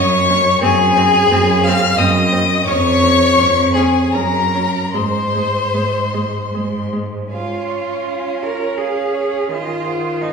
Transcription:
Already playing: cello F#2, violin C#5 C#6
0.30 viola C#4
0.61 cello F#2, viola C4, violin G#4 G#5
0.96 viola C4
1.30 cello F#2, viola C4
1.64 viola C4, violin F5 F6
1.97 cello F#2, viola C4, violin D#5 D#6
2.32 viola C4
2.66 cello F2, viola C#4, violin C#5 C#6
3.02 viola C#4
3.38 cello F2, viola C#4
3.74 viola C#4, violin G#4 G#5
4.11 cello F#2, viola C#4, violin A#4 A#5
4.54 viola C#4
4.93 cello G#2, viola G#3, violin C5 C6
5.35 viola G#3
5.73 cello G#2, viola G#3
6.13 viola G#3
6.53 cello G#2, viola G#3
6.93 viola G#3
7.29 viola C#4, cello F4, violin F5 G#5
7.66 violin C#5 F5
8.05 violin F5 G#5
8.42 cello A#4, violin C#5 F5
8.76 cello G#4, violin F5 G#5
9.12 violin C#5 F5
9.48 viola D#3, cello F4, violin D#5 G#5
9.85 violin C5 F#5
10.19 cello D#4, violin G#5
10.24 violin D#5

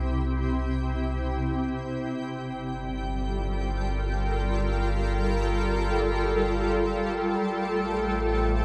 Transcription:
Already playing: analog synth bass C2, ambient pad C3 C4 E4 G4 G5
2.10 analog synth bass G1, ambient pad G3
2.24 ambient pad A4
2.52 ambient pad F4
3.06 ambient pad A#4
7.39 analog synth bass A1, ambient pad A3
7.71 ambient pad C5

